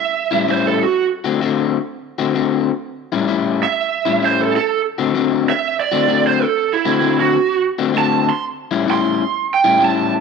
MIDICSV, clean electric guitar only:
0, 0, Header, 1, 2, 480
1, 0, Start_track
1, 0, Tempo, 466200
1, 973, Time_signature, 4, 2, 24, 8
1, 10507, End_track
2, 0, Start_track
2, 0, Title_t, "Clean electric guitar"
2, 0, Program_c, 0, 27
2, 319, Note_on_c, 0, 64, 88
2, 327, Note_on_c, 0, 61, 76
2, 329, Note_on_c, 0, 55, 79
2, 333, Note_on_c, 0, 45, 69
2, 477, Note_off_c, 0, 45, 0
2, 483, Note_off_c, 0, 55, 0
2, 485, Note_off_c, 0, 61, 0
2, 486, Note_off_c, 0, 64, 0
2, 490, Note_on_c, 0, 45, 72
2, 495, Note_on_c, 0, 55, 76
2, 498, Note_on_c, 0, 61, 80
2, 500, Note_on_c, 0, 64, 79
2, 858, Note_off_c, 0, 45, 0
2, 861, Note_off_c, 0, 55, 0
2, 862, Note_off_c, 0, 61, 0
2, 864, Note_off_c, 0, 64, 0
2, 1280, Note_on_c, 0, 66, 98
2, 1289, Note_on_c, 0, 60, 91
2, 1291, Note_on_c, 0, 57, 93
2, 1297, Note_on_c, 0, 50, 75
2, 1437, Note_off_c, 0, 50, 0
2, 1441, Note_off_c, 0, 57, 0
2, 1443, Note_off_c, 0, 60, 0
2, 1448, Note_off_c, 0, 66, 0
2, 1449, Note_on_c, 0, 50, 77
2, 1453, Note_on_c, 0, 57, 76
2, 1455, Note_on_c, 0, 60, 84
2, 1462, Note_on_c, 0, 66, 92
2, 1819, Note_off_c, 0, 50, 0
2, 1821, Note_off_c, 0, 57, 0
2, 1822, Note_off_c, 0, 60, 0
2, 1826, Note_off_c, 0, 66, 0
2, 2248, Note_on_c, 0, 66, 89
2, 2254, Note_on_c, 0, 60, 84
2, 2256, Note_on_c, 0, 57, 84
2, 2260, Note_on_c, 0, 50, 72
2, 2402, Note_off_c, 0, 50, 0
2, 2410, Note_off_c, 0, 57, 0
2, 2410, Note_off_c, 0, 60, 0
2, 2413, Note_off_c, 0, 66, 0
2, 2415, Note_on_c, 0, 50, 73
2, 2422, Note_on_c, 0, 57, 76
2, 2423, Note_on_c, 0, 60, 78
2, 2427, Note_on_c, 0, 66, 77
2, 2782, Note_off_c, 0, 50, 0
2, 2786, Note_off_c, 0, 57, 0
2, 2786, Note_off_c, 0, 60, 0
2, 2789, Note_off_c, 0, 66, 0
2, 3212, Note_on_c, 0, 64, 90
2, 3218, Note_on_c, 0, 55, 90
2, 3218, Note_on_c, 0, 61, 89
2, 3223, Note_on_c, 0, 45, 80
2, 3363, Note_off_c, 0, 45, 0
2, 3366, Note_off_c, 0, 55, 0
2, 3370, Note_off_c, 0, 64, 0
2, 3371, Note_off_c, 0, 61, 0
2, 3375, Note_on_c, 0, 45, 78
2, 3379, Note_on_c, 0, 55, 77
2, 3382, Note_on_c, 0, 64, 82
2, 3383, Note_on_c, 0, 61, 77
2, 3743, Note_off_c, 0, 45, 0
2, 3745, Note_off_c, 0, 55, 0
2, 3746, Note_off_c, 0, 64, 0
2, 3747, Note_off_c, 0, 61, 0
2, 4173, Note_on_c, 0, 64, 95
2, 4175, Note_on_c, 0, 61, 80
2, 4184, Note_on_c, 0, 55, 77
2, 4189, Note_on_c, 0, 45, 72
2, 4324, Note_off_c, 0, 45, 0
2, 4327, Note_off_c, 0, 55, 0
2, 4330, Note_off_c, 0, 61, 0
2, 4336, Note_off_c, 0, 64, 0
2, 4336, Note_on_c, 0, 45, 70
2, 4339, Note_on_c, 0, 55, 66
2, 4342, Note_on_c, 0, 61, 78
2, 4347, Note_on_c, 0, 64, 74
2, 4703, Note_off_c, 0, 45, 0
2, 4705, Note_off_c, 0, 55, 0
2, 4706, Note_off_c, 0, 61, 0
2, 4709, Note_off_c, 0, 64, 0
2, 5130, Note_on_c, 0, 66, 95
2, 5138, Note_on_c, 0, 60, 91
2, 5140, Note_on_c, 0, 57, 78
2, 5146, Note_on_c, 0, 50, 75
2, 5285, Note_off_c, 0, 50, 0
2, 5288, Note_off_c, 0, 57, 0
2, 5290, Note_off_c, 0, 60, 0
2, 5294, Note_off_c, 0, 66, 0
2, 5297, Note_on_c, 0, 50, 80
2, 5300, Note_on_c, 0, 57, 76
2, 5302, Note_on_c, 0, 60, 80
2, 5306, Note_on_c, 0, 66, 81
2, 5663, Note_off_c, 0, 50, 0
2, 5665, Note_off_c, 0, 57, 0
2, 5666, Note_off_c, 0, 60, 0
2, 5668, Note_off_c, 0, 66, 0
2, 6090, Note_on_c, 0, 66, 91
2, 6100, Note_on_c, 0, 60, 88
2, 6104, Note_on_c, 0, 50, 73
2, 6106, Note_on_c, 0, 57, 76
2, 6241, Note_off_c, 0, 50, 0
2, 6242, Note_off_c, 0, 57, 0
2, 6249, Note_off_c, 0, 60, 0
2, 6249, Note_off_c, 0, 66, 0
2, 6253, Note_on_c, 0, 50, 71
2, 6255, Note_on_c, 0, 57, 74
2, 6262, Note_on_c, 0, 60, 74
2, 6262, Note_on_c, 0, 66, 80
2, 6621, Note_off_c, 0, 50, 0
2, 6621, Note_off_c, 0, 57, 0
2, 6625, Note_off_c, 0, 60, 0
2, 6625, Note_off_c, 0, 66, 0
2, 7056, Note_on_c, 0, 66, 100
2, 7058, Note_on_c, 0, 60, 93
2, 7062, Note_on_c, 0, 57, 89
2, 7065, Note_on_c, 0, 50, 80
2, 7201, Note_off_c, 0, 50, 0
2, 7206, Note_off_c, 0, 57, 0
2, 7209, Note_off_c, 0, 60, 0
2, 7211, Note_off_c, 0, 66, 0
2, 7213, Note_on_c, 0, 50, 76
2, 7218, Note_on_c, 0, 57, 79
2, 7222, Note_on_c, 0, 60, 79
2, 7223, Note_on_c, 0, 66, 79
2, 7580, Note_off_c, 0, 50, 0
2, 7583, Note_off_c, 0, 57, 0
2, 7584, Note_off_c, 0, 60, 0
2, 7585, Note_off_c, 0, 66, 0
2, 8015, Note_on_c, 0, 66, 99
2, 8019, Note_on_c, 0, 60, 97
2, 8022, Note_on_c, 0, 57, 87
2, 8025, Note_on_c, 0, 50, 73
2, 8160, Note_off_c, 0, 50, 0
2, 8162, Note_off_c, 0, 57, 0
2, 8168, Note_off_c, 0, 60, 0
2, 8172, Note_off_c, 0, 66, 0
2, 8172, Note_on_c, 0, 50, 72
2, 8175, Note_on_c, 0, 57, 76
2, 8181, Note_on_c, 0, 60, 82
2, 8184, Note_on_c, 0, 66, 85
2, 8539, Note_off_c, 0, 50, 0
2, 8540, Note_off_c, 0, 57, 0
2, 8543, Note_off_c, 0, 60, 0
2, 8545, Note_off_c, 0, 66, 0
2, 8968, Note_on_c, 0, 64, 107
2, 8970, Note_on_c, 0, 55, 85
2, 8971, Note_on_c, 0, 61, 100
2, 8980, Note_on_c, 0, 45, 86
2, 9122, Note_off_c, 0, 45, 0
2, 9127, Note_off_c, 0, 55, 0
2, 9131, Note_off_c, 0, 64, 0
2, 9132, Note_off_c, 0, 61, 0
2, 9134, Note_on_c, 0, 45, 80
2, 9139, Note_on_c, 0, 55, 74
2, 9142, Note_on_c, 0, 61, 80
2, 9144, Note_on_c, 0, 64, 92
2, 9500, Note_off_c, 0, 45, 0
2, 9502, Note_off_c, 0, 55, 0
2, 9504, Note_off_c, 0, 61, 0
2, 9504, Note_off_c, 0, 64, 0
2, 9926, Note_on_c, 0, 64, 101
2, 9929, Note_on_c, 0, 61, 84
2, 9933, Note_on_c, 0, 55, 82
2, 9938, Note_on_c, 0, 45, 82
2, 10076, Note_off_c, 0, 45, 0
2, 10080, Note_off_c, 0, 55, 0
2, 10083, Note_off_c, 0, 61, 0
2, 10088, Note_on_c, 0, 45, 72
2, 10090, Note_off_c, 0, 64, 0
2, 10093, Note_on_c, 0, 55, 79
2, 10096, Note_on_c, 0, 61, 83
2, 10101, Note_on_c, 0, 64, 81
2, 10457, Note_off_c, 0, 45, 0
2, 10459, Note_off_c, 0, 55, 0
2, 10460, Note_off_c, 0, 61, 0
2, 10463, Note_off_c, 0, 64, 0
2, 10507, End_track
0, 0, End_of_file